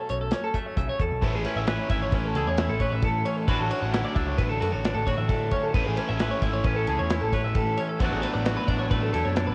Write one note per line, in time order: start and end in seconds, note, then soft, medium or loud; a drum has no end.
0.00 1.19 F#3 medium
0.00 0.54 A3 medium
0.00 0.30 C#4 medium
0.00 1.19 A4 medium
0.09 0.30 B1 medium
0.09 1.20 F#2 medium
0.09 0.21 C#5 medium
0.09 closed hi-hat medium
0.21 0.33 A4 medium
0.31 1.44 C#4 medium
0.31 0.44 C#5 medium
0.31 snare loud
0.31 closed hi-hat medium
0.44 0.55 A4 medium
0.54 1.45 A3 medium
0.54 0.66 E5 medium
0.54 kick medium
0.54 closed hi-hat medium
0.66 0.77 C#5 medium
0.77 0.87 B1 loud
0.77 0.99 C#3 medium
0.77 0.89 E5 medium
0.77 kick loud
0.77 closed hi-hat medium
0.89 1.00 C#5 medium
0.99 1.10 E2 medium
0.99 1.21 B2 medium
0.99 1.23 A4 medium
0.99 kick medium
0.99 closed hi-hat medium
1.11 1.21 B1 medium
1.21 1.32 A1 loud
1.21 2.35 A2 medium
1.21 3.48 A2 medium
1.21 3.47 E3 loud
1.21 3.49 A3 loud
1.21 3.50 C#4 loud
1.21 3.48 E4 loud
1.21 1.34 B4 medium
1.21 kick loud
1.21 ride loud
1.33 1.43 A1 medium
1.33 1.45 G#4 medium
1.45 2.14 C#4 medium
1.45 1.57 B4 medium
1.45 snare soft
1.45 ride medium
1.56 1.76 A1 medium
1.56 1.79 E5 medium
1.67 3.47 E3 medium
1.67 2.35 B4 medium
1.67 snare loud
1.67 ride medium
1.79 1.90 C#5 medium
1.90 2.10 G#1 medium
1.90 2.57 E4 medium
1.90 2.02 E5 medium
1.90 kick medium
1.90 ride medium
2.02 2.14 C#5 medium
2.12 2.32 A1 medium
2.12 3.26 C#4 medium
2.12 2.25 B4 medium
2.12 kick loud
2.12 snare soft
2.12 ride medium
2.25 2.35 A4 medium
2.35 2.45 C#2 medium
2.35 3.03 E2 medium
2.35 2.81 G#4 medium
2.35 2.47 A4 medium
2.35 snare soft
2.35 ride medium
2.46 2.66 E2 medium
2.46 2.70 C#5 medium
2.57 3.46 E4 medium
2.57 snare loud
2.57 ride loud
2.69 2.89 A1 medium
2.69 2.81 A4 medium
2.80 3.46 B4 medium
2.80 2.92 C#5 medium
2.80 kick medium
2.80 ride medium
2.92 3.02 A1 loud
2.92 3.03 E5 medium
3.02 3.22 A2 medium
3.02 3.47 A2 medium
3.02 3.26 A4 medium
3.02 kick loud
3.02 ride medium
3.25 3.49 C#4 medium
3.25 3.37 C#5 medium
3.25 ride medium
3.37 3.47 A4 medium
3.47 3.58 A1 loud
3.47 4.60 A2 medium
3.47 5.74 A2 loud
3.47 5.73 D3 loud
3.47 3.91 F#3 medium
3.47 5.75 A3 loud
3.47 4.19 C#4 medium
3.47 4.15 D4 medium
3.47 5.74 D4 medium
3.47 3.93 F#4 medium
3.47 5.75 F#4 loud
3.47 3.60 B4 loud
3.47 kick loud
3.47 ride loud
3.60 3.69 A1 medium
3.60 3.70 A4 medium
3.71 3.82 C#5 medium
3.71 ride medium
3.82 4.02 A1 medium
3.82 4.04 F#5 medium
3.92 5.71 F#3 medium
3.92 4.60 E4 medium
3.92 snare loud
3.92 ride loud
4.05 4.15 D5 medium
4.15 4.36 C#2 medium
4.15 4.84 D4 medium
4.15 4.27 E5 medium
4.15 kick medium
4.15 ride medium
4.27 4.38 C#5 medium
4.38 4.58 A1 loud
4.38 4.49 B4 medium
4.38 kick loud
4.38 snare soft
4.38 ride loud
4.49 4.59 A4 medium
4.60 4.71 F#2 medium
4.60 5.30 A2 medium
4.60 5.06 F#4 medium
4.60 4.72 A4 medium
4.60 snare soft
4.60 ride medium
4.72 4.92 A1 loud
4.72 4.94 C#5 medium
4.84 5.72 D4 medium
4.84 snare loud
4.84 ride loud
4.95 5.15 A1 medium
4.95 5.06 A4 medium
5.07 5.73 F#4 medium
5.07 5.17 C#5 medium
5.07 kick medium
5.07 snare soft
5.07 ride medium
5.18 5.28 A1 medium
5.18 5.29 E5 medium
5.29 5.49 A2 loud
5.29 5.75 A2 medium
5.29 5.52 A4 medium
5.29 kick loud
5.29 snare soft
5.29 ride loud
5.51 5.72 C#4 medium
5.51 5.63 C#5 medium
5.51 kick medium
5.51 ride medium
5.63 5.74 A4 medium
5.74 5.84 A1 medium
5.74 7.99 A2 loud
5.74 6.88 A2 medium
5.74 8.00 E3 loud
5.74 8.01 A3 loud
5.74 8.01 C#4 loud
5.74 8.01 E4 loud
5.74 5.86 B4 medium
5.74 kick loud
5.74 ride loud
5.86 5.97 A1 medium
5.86 5.97 G#4 medium
5.97 6.66 C#4 medium
5.97 6.08 B4 medium
5.97 snare soft
5.97 ride medium
6.09 6.29 A1 medium
6.09 6.31 E5 medium
6.20 8.02 E3 medium
6.20 6.89 B4 medium
6.20 snare loud
6.20 ride loud
6.31 6.42 C#5 medium
6.42 6.62 G#1 medium
6.42 7.11 E4 medium
6.42 6.53 E5 medium
6.42 kick medium
6.42 snare soft
6.42 ride medium
6.53 6.65 C#5 medium
6.64 6.84 A1 medium
6.64 7.79 C#4 medium
6.64 6.76 B4 medium
6.64 kick loud
6.64 ride medium
6.76 6.87 A4 medium
6.87 6.98 C#2 medium
6.87 7.56 E2 medium
6.87 7.34 G#4 medium
6.87 6.99 A4 medium
6.87 ride medium
6.99 7.19 E2 loud
6.99 7.22 C#5 medium
7.10 7.99 E4 medium
7.10 snare loud
7.10 ride loud
7.21 7.41 A1 medium
7.21 7.33 A4 medium
7.33 8.04 B4 medium
7.33 7.44 C#5 medium
7.33 kick medium
7.33 snare soft
7.33 ride medium
7.44 7.54 A1 loud
7.44 7.56 E5 medium
7.55 7.75 A2 medium
7.55 8.01 A2 medium
7.55 7.78 A4 medium
7.55 kick loud
7.55 ride loud
7.78 7.99 C#4 medium
7.78 7.89 C#5 medium
7.78 ride medium
7.89 8.01 A4 medium
7.99 8.10 A1 loud
7.99 9.14 A2 medium
7.99 9.55 B2 loud
7.99 9.55 F#3 loud
7.99 8.44 F#3 medium
7.99 8.23 A3 medium
7.99 9.55 B3 loud
7.99 9.55 D4 medium
7.99 9.55 F#4 loud
7.99 8.11 B4 medium
7.99 kick loud
7.99 ride loud
8.04 8.68 D4 medium
8.04 8.45 F#4 medium
8.11 8.22 A1 medium
8.11 8.22 G#4 medium
8.22 8.91 A3 medium
8.22 8.33 B4 medium
8.22 snare soft
8.22 ride medium
8.33 8.54 A1 medium
8.33 8.56 D5 medium
8.45 9.55 F#3 medium
8.45 9.14 F#4 medium
8.45 snare loud
8.45 ride loud
8.57 8.67 B4 medium
8.68 8.88 A1 medium
8.68 9.37 D4 medium
8.68 8.79 D5 medium
8.68 kick medium
8.68 ride medium
8.79 8.90 C#5 medium
8.91 9.11 A1 medium
8.91 9.55 A3 medium
8.91 9.02 B4 medium
8.91 kick loud
8.91 ride loud
9.02 9.12 A4 medium
9.13 9.24 E2 medium
9.13 9.55 A2 medium
9.13 9.55 E4 medium
9.13 9.25 A4 medium
9.13 snare soft
9.13 ride medium
9.24 9.45 F#2 medium
9.24 9.47 C#5 medium
9.36 9.55 D4 medium
9.36 snare loud
9.36 ride loud
9.47 9.55 A1 medium
9.47 9.55 B4 medium